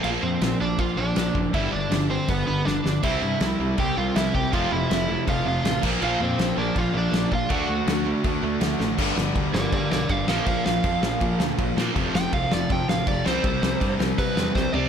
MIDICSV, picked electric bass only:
0, 0, Header, 1, 2, 480
1, 0, Start_track
1, 0, Tempo, 374298
1, 47, Time_signature, 4, 2, 24, 8
1, 6768, Tempo, 371287
1, 19192, End_track
2, 0, Start_track
2, 0, Title_t, "Picked electric bass"
2, 0, Program_c, 0, 34
2, 52, Note_on_c, 0, 34, 87
2, 211, Note_off_c, 0, 34, 0
2, 294, Note_on_c, 0, 41, 86
2, 453, Note_off_c, 0, 41, 0
2, 530, Note_on_c, 0, 34, 103
2, 691, Note_off_c, 0, 34, 0
2, 777, Note_on_c, 0, 34, 87
2, 935, Note_off_c, 0, 34, 0
2, 1009, Note_on_c, 0, 34, 85
2, 1170, Note_off_c, 0, 34, 0
2, 1251, Note_on_c, 0, 34, 82
2, 1412, Note_off_c, 0, 34, 0
2, 1492, Note_on_c, 0, 34, 81
2, 1653, Note_off_c, 0, 34, 0
2, 1732, Note_on_c, 0, 30, 86
2, 1893, Note_off_c, 0, 30, 0
2, 1976, Note_on_c, 0, 31, 90
2, 2136, Note_off_c, 0, 31, 0
2, 2229, Note_on_c, 0, 31, 88
2, 2384, Note_off_c, 0, 31, 0
2, 2453, Note_on_c, 0, 31, 97
2, 2774, Note_off_c, 0, 31, 0
2, 2933, Note_on_c, 0, 31, 89
2, 3094, Note_off_c, 0, 31, 0
2, 3185, Note_on_c, 0, 31, 76
2, 3342, Note_off_c, 0, 31, 0
2, 3420, Note_on_c, 0, 31, 86
2, 3578, Note_off_c, 0, 31, 0
2, 3660, Note_on_c, 0, 31, 86
2, 3819, Note_off_c, 0, 31, 0
2, 3895, Note_on_c, 0, 36, 89
2, 4055, Note_off_c, 0, 36, 0
2, 4135, Note_on_c, 0, 43, 92
2, 4295, Note_off_c, 0, 43, 0
2, 4370, Note_on_c, 0, 36, 96
2, 4532, Note_off_c, 0, 36, 0
2, 4613, Note_on_c, 0, 36, 91
2, 4773, Note_off_c, 0, 36, 0
2, 4854, Note_on_c, 0, 36, 88
2, 5013, Note_off_c, 0, 36, 0
2, 5095, Note_on_c, 0, 36, 86
2, 5254, Note_off_c, 0, 36, 0
2, 5335, Note_on_c, 0, 36, 78
2, 5494, Note_off_c, 0, 36, 0
2, 5573, Note_on_c, 0, 36, 96
2, 5732, Note_off_c, 0, 36, 0
2, 5813, Note_on_c, 0, 29, 89
2, 5972, Note_off_c, 0, 29, 0
2, 6055, Note_on_c, 0, 29, 90
2, 6213, Note_off_c, 0, 29, 0
2, 6294, Note_on_c, 0, 29, 96
2, 6611, Note_off_c, 0, 29, 0
2, 6768, Note_on_c, 0, 29, 87
2, 6928, Note_off_c, 0, 29, 0
2, 7005, Note_on_c, 0, 29, 84
2, 7166, Note_off_c, 0, 29, 0
2, 7242, Note_on_c, 0, 33, 86
2, 7404, Note_off_c, 0, 33, 0
2, 7490, Note_on_c, 0, 34, 97
2, 7650, Note_off_c, 0, 34, 0
2, 7729, Note_on_c, 0, 34, 90
2, 7889, Note_off_c, 0, 34, 0
2, 7967, Note_on_c, 0, 41, 91
2, 8128, Note_off_c, 0, 41, 0
2, 8198, Note_on_c, 0, 34, 89
2, 8362, Note_off_c, 0, 34, 0
2, 8436, Note_on_c, 0, 34, 94
2, 8601, Note_off_c, 0, 34, 0
2, 8683, Note_on_c, 0, 34, 96
2, 8845, Note_off_c, 0, 34, 0
2, 8914, Note_on_c, 0, 34, 85
2, 9079, Note_off_c, 0, 34, 0
2, 9153, Note_on_c, 0, 34, 83
2, 9318, Note_off_c, 0, 34, 0
2, 9407, Note_on_c, 0, 34, 91
2, 9568, Note_off_c, 0, 34, 0
2, 9645, Note_on_c, 0, 38, 97
2, 9806, Note_off_c, 0, 38, 0
2, 9874, Note_on_c, 0, 38, 91
2, 10039, Note_off_c, 0, 38, 0
2, 10119, Note_on_c, 0, 38, 95
2, 10442, Note_off_c, 0, 38, 0
2, 10603, Note_on_c, 0, 38, 81
2, 10765, Note_off_c, 0, 38, 0
2, 10845, Note_on_c, 0, 38, 89
2, 11006, Note_off_c, 0, 38, 0
2, 11074, Note_on_c, 0, 38, 86
2, 11238, Note_off_c, 0, 38, 0
2, 11316, Note_on_c, 0, 33, 89
2, 11480, Note_off_c, 0, 33, 0
2, 11564, Note_on_c, 0, 31, 93
2, 11716, Note_off_c, 0, 31, 0
2, 11795, Note_on_c, 0, 31, 86
2, 11949, Note_off_c, 0, 31, 0
2, 12043, Note_on_c, 0, 38, 89
2, 12195, Note_off_c, 0, 38, 0
2, 12278, Note_on_c, 0, 31, 89
2, 12431, Note_off_c, 0, 31, 0
2, 12518, Note_on_c, 0, 43, 93
2, 12671, Note_off_c, 0, 43, 0
2, 12765, Note_on_c, 0, 35, 78
2, 12916, Note_off_c, 0, 35, 0
2, 12996, Note_on_c, 0, 31, 91
2, 13150, Note_off_c, 0, 31, 0
2, 13242, Note_on_c, 0, 34, 91
2, 13394, Note_off_c, 0, 34, 0
2, 13476, Note_on_c, 0, 34, 96
2, 13630, Note_off_c, 0, 34, 0
2, 13726, Note_on_c, 0, 34, 89
2, 13876, Note_off_c, 0, 34, 0
2, 13958, Note_on_c, 0, 41, 99
2, 14111, Note_off_c, 0, 41, 0
2, 14199, Note_on_c, 0, 34, 87
2, 14352, Note_off_c, 0, 34, 0
2, 14438, Note_on_c, 0, 46, 92
2, 14591, Note_off_c, 0, 46, 0
2, 14681, Note_on_c, 0, 38, 81
2, 14833, Note_off_c, 0, 38, 0
2, 14929, Note_on_c, 0, 34, 88
2, 15078, Note_off_c, 0, 34, 0
2, 15163, Note_on_c, 0, 46, 91
2, 15314, Note_off_c, 0, 46, 0
2, 15404, Note_on_c, 0, 29, 92
2, 15555, Note_off_c, 0, 29, 0
2, 15645, Note_on_c, 0, 29, 92
2, 15796, Note_off_c, 0, 29, 0
2, 15886, Note_on_c, 0, 36, 92
2, 16036, Note_off_c, 0, 36, 0
2, 16139, Note_on_c, 0, 29, 93
2, 16285, Note_off_c, 0, 29, 0
2, 16362, Note_on_c, 0, 41, 94
2, 16513, Note_off_c, 0, 41, 0
2, 16612, Note_on_c, 0, 33, 80
2, 16760, Note_off_c, 0, 33, 0
2, 16844, Note_on_c, 0, 29, 81
2, 16995, Note_off_c, 0, 29, 0
2, 17090, Note_on_c, 0, 36, 87
2, 17239, Note_off_c, 0, 36, 0
2, 17319, Note_on_c, 0, 36, 90
2, 17472, Note_off_c, 0, 36, 0
2, 17561, Note_on_c, 0, 36, 91
2, 17712, Note_off_c, 0, 36, 0
2, 17807, Note_on_c, 0, 43, 96
2, 17957, Note_off_c, 0, 43, 0
2, 18030, Note_on_c, 0, 36, 94
2, 18185, Note_off_c, 0, 36, 0
2, 18284, Note_on_c, 0, 48, 88
2, 18435, Note_off_c, 0, 48, 0
2, 18509, Note_on_c, 0, 40, 87
2, 18665, Note_off_c, 0, 40, 0
2, 18761, Note_on_c, 0, 36, 93
2, 18913, Note_off_c, 0, 36, 0
2, 19003, Note_on_c, 0, 48, 95
2, 19155, Note_off_c, 0, 48, 0
2, 19192, End_track
0, 0, End_of_file